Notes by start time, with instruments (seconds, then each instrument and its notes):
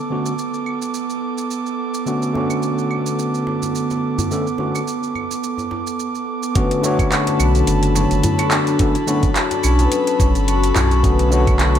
Already playing: analog synth pad B3 A4 D6, harp C#4
0.10 tine electric piano D3 A3 B3 C#4 F#4
0.26 shaker
0.39 shaker
0.54 shaker
0.66 claves
0.82 shaker
0.94 shaker
1.10 shaker
1.38 shaker
1.51 shaker
1.66 shaker
1.94 shaker
2.06 tine electric piano D3 A3 B3 C#4 F#4, shaker
2.22 shaker
2.33 tine electric piano D3 A3 B3 C#4 F#4, djembe slap, djembe tone
2.50 claves, shaker
2.63 shaker
2.78 shaker
2.91 claves
3.06 shaker
3.19 shaker
3.34 shaker
3.47 djembe slap
3.62 djembe tone, shaker
3.75 shaker
3.90 djembe slap, shaker
4.18 djembe bass, shaker
4.31 tine electric piano D3 A3 B3 C#4 A4, shaker
4.47 shaker
4.58 tine electric piano D3 A3 B3 C#4 F#4, djembe slap, djembe tone
4.75 claves, shaker
4.88 shaker
5.03 shaker
5.15 djembe tone, claves
5.31 djembe slap, shaker
5.43 shaker
5.58 djembe tone, shaker
5.71 djembe slap, djembe tone
5.87 shaker
6.00 shaker
6.15 shaker
6.43 shaker
6.55 tine electric piano D3 A3 B3 C#4 F#4, harp B3, analog synth pad A4 A5 B5, kick, closed hi-hat, shaker
6.71 closed hi-hat, shaker
6.82 tine electric piano D3 A3 B3 F#4 C#5, djembe slap, shaker
6.99 harp C#4, kick, closed hi-hat, claves, shaker
7.12 harp F#4, clap, closed hi-hat, shaker
7.27 closed hi-hat, djembe tone, shaker
7.40 sub bass B1, harp D4, claves, shaker
7.55 closed hi-hat, djembe tone, shaker
7.67 sub bass F#1, closed hi-hat, shaker
7.83 closed hi-hat, shaker
7.95 harp F#3, djembe slap, shaker
8.11 sub bass F#1, closed hi-hat, shaker
8.23 closed hi-hat, djembe bass, shaker
8.38 harp F#4, closed hi-hat, djembe slap, claves, shaker
8.51 harp D4, clap, shaker
8.67 closed hi-hat, shaker
8.79 tine electric piano D3 A3 B3 C#4 A4, kick, closed hi-hat, shaker
8.95 harp E4, closed hi-hat, shaker
9.07 tine electric piano D3 A3 B3 C#4 F#4, harp F#3, djembe slap, shaker
9.23 kick, closed hi-hat, shaker
9.36 clap, closed hi-hat, shaker
9.51 harp D4, closed hi-hat, djembe tone, shaker
9.63 sub bass B1, harp C#4, claves, shaker
9.79 harp B3, closed hi-hat, djembe slap, djembe tone, shaker
9.92 closed hi-hat, shaker
10.07 closed hi-hat, shaker
10.20 sub bass B1, harp F#3, kick, djembe slap, shaker
10.35 sub bass F#1, closed hi-hat, shaker
10.48 harp F#4, closed hi-hat, shaker
10.64 closed hi-hat, shaker
10.76 sub bass B1, harp C#4, clap, djembe bass, shaker
10.91 harp F#4, closed hi-hat, shaker
11.03 tine electric piano D3 A3 B3 C#4 F#4, harp B3, kick, closed hi-hat, shaker
11.19 closed hi-hat, shaker
11.29 tine electric piano D3 A3 B3 F#4 C#5, djembe slap, shaker
11.47 harp C#4, kick, closed hi-hat, claves, shaker
11.59 harp F#4, clap, closed hi-hat, shaker
11.75 closed hi-hat, djembe tone, shaker